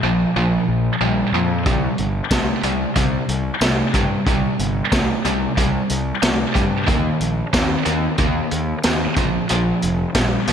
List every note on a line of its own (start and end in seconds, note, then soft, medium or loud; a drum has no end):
0.03 0.24 A#1 medium
0.03 0.33 A#2 medium
0.03 0.33 F3 medium
0.36 0.57 A#1 medium
0.36 0.95 A#2 medium
0.36 0.95 F3 medium
0.68 0.89 A#1 medium
1.01 1.21 A#1 medium
1.01 1.30 A#2 medium
1.01 1.31 G3 medium
1.32 1.67 F2 medium
1.32 1.63 A#2 medium
1.32 1.64 F3 medium
1.66 1.87 C2 medium
1.66 2.25 C3 medium
1.66 2.25 G3 medium
1.66 kick loud
1.66 closed hi-hat medium
1.98 2.19 G1 medium
1.98 closed hi-hat medium
2.31 2.51 C2 medium
2.31 2.61 C3 medium
2.31 2.61 A3 medium
2.31 kick medium
2.31 snare loud
2.31 closed hi-hat medium
2.31 tambourine medium
2.63 2.84 C2 medium
2.63 2.93 C3 medium
2.63 2.93 G3 medium
2.63 closed hi-hat medium
2.96 3.17 C2 medium
2.96 3.55 C3 medium
2.96 3.55 G3 medium
2.96 kick medium
2.96 closed hi-hat medium
3.28 3.49 C2 medium
3.28 closed hi-hat medium
3.61 3.82 C2 medium
3.61 3.91 C3 medium
3.61 3.91 A3 medium
3.61 snare medium
3.61 closed hi-hat medium
3.61 tambourine medium
3.94 4.15 G2 medium
3.94 4.24 C3 medium
3.94 4.24 G3 medium
3.94 kick medium
3.94 closed hi-hat medium
4.26 4.47 C2 medium
4.26 4.85 C3 medium
4.26 4.86 G3 medium
4.26 kick loud
4.26 closed hi-hat medium
4.59 4.80 G1 medium
4.59 closed hi-hat medium
4.92 5.12 C2 medium
4.92 5.21 C3 medium
4.92 5.22 A3 medium
4.92 kick medium
4.92 snare loud
4.92 closed hi-hat medium
4.92 tambourine medium
5.25 5.45 C2 medium
5.25 5.54 C3 medium
5.25 5.54 G3 medium
5.25 closed hi-hat medium
5.57 5.78 C2 medium
5.57 6.16 C3 medium
5.57 6.16 G3 medium
5.57 kick medium
5.57 closed hi-hat medium
5.90 6.11 C2 medium
5.90 closed hi-hat medium
6.22 6.43 C2 medium
6.22 6.52 C3 medium
6.22 6.52 A3 medium
6.22 snare medium
6.22 closed hi-hat medium
6.22 tambourine loud
6.55 6.89 G2 medium
6.55 6.84 C3 medium
6.55 6.85 G3 medium
6.55 kick medium
6.55 closed hi-hat medium
6.87 7.09 D#2 medium
6.87 7.46 D#3 medium
6.87 7.47 A#3 medium
6.87 kick medium
6.87 closed hi-hat medium
7.20 7.41 A#1 medium
7.20 closed hi-hat medium
7.53 7.74 D#2 medium
7.53 7.83 D#3 medium
7.53 7.83 C4 medium
7.53 kick medium
7.53 snare medium
7.53 closed hi-hat medium
7.53 tambourine loud
7.85 8.07 D#2 medium
7.85 8.15 D#3 medium
7.85 8.16 A#3 medium
7.85 closed hi-hat medium
8.18 8.39 D#2 medium
8.18 8.78 D#3 medium
8.18 8.78 A#3 medium
8.18 kick medium
8.18 closed hi-hat medium
8.51 8.72 D#2 medium
8.51 closed hi-hat medium
8.84 9.05 D#2 medium
8.84 9.14 D#3 medium
8.84 9.14 C4 medium
8.84 snare loud
8.84 closed hi-hat medium
8.84 tambourine medium
9.16 9.38 A#1 medium
9.16 9.47 A#2 medium
9.16 9.47 F3 medium
9.16 kick medium
9.16 closed hi-hat medium
9.49 9.71 A#1 medium
9.49 10.09 A#2 medium
9.49 10.09 F3 medium
9.49 closed hi-hat medium
9.82 10.04 F1 medium
9.82 closed hi-hat medium
10.15 10.36 A#1 medium
10.15 10.45 A#2 medium
10.15 10.45 G3 medium
10.15 kick medium
10.15 snare loud
10.15 closed hi-hat medium
10.15 tambourine loud
10.47 10.53 A#1 medium
10.47 10.53 A#2 medium
10.47 10.53 F3 medium
10.47 closed hi-hat medium